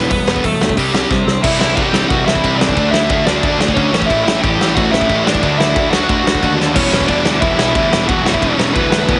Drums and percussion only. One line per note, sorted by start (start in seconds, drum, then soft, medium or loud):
0.10 kick loud
0.10 open hi-hat medium
0.28 snare loud
0.36 kick medium
0.44 kick medium
0.44 open hi-hat medium
0.61 snare loud
0.69 kick medium
0.77 kick medium
0.77 open hi-hat medium
0.95 snare loud
1.11 kick loud
1.11 snare medium
1.28 snare medium
1.44 kick loud
1.44 crash loud
1.44 crash medium
1.61 snare loud
1.77 kick loud
1.77 crash medium
1.94 snare loud
2.10 kick loud
2.10 crash medium
2.28 snare loud
2.35 kick medium
2.44 kick medium
2.44 crash medium
2.61 snare loud
2.69 kick medium
2.77 kick medium
2.77 crash medium
2.94 snare loud
3.09 kick loud
3.09 crash medium
3.27 snare loud
3.43 kick loud
3.43 crash medium
3.61 snare loud
3.68 kick medium
3.77 kick medium
3.77 crash medium
3.94 snare loud
4.02 kick medium
4.10 kick medium
4.10 crash medium
4.28 snare loud
4.44 kick loud
4.44 crash medium
4.61 snare loud
4.77 kick loud
4.77 crash medium
4.94 snare loud
5.01 kick medium
5.09 kick medium
5.09 crash medium
5.27 snare loud
5.35 kick medium
5.43 kick loud
5.43 crash medium
5.60 snare loud
5.76 kick loud
5.76 crash medium
5.93 snare loud
6.09 kick loud
6.09 crash medium
6.27 snare loud
6.35 kick medium
6.43 kick medium
6.43 crash medium
6.60 snare medium
6.76 kick loud
6.76 crash loud
6.93 snare loud
7.00 kick medium
7.08 kick loud
7.08 ride medium
7.25 snare loud
7.42 kick loud
7.42 ride medium
7.59 snare loud
7.75 kick loud
7.75 ride medium
7.93 snare loud
8.09 kick loud
8.09 ride medium
8.26 snare loud
8.34 kick medium
8.42 kick loud
8.42 ride medium
8.59 snare loud
8.76 kick loud
8.76 ride medium
8.92 snare loud
9.09 kick loud
9.09 ride medium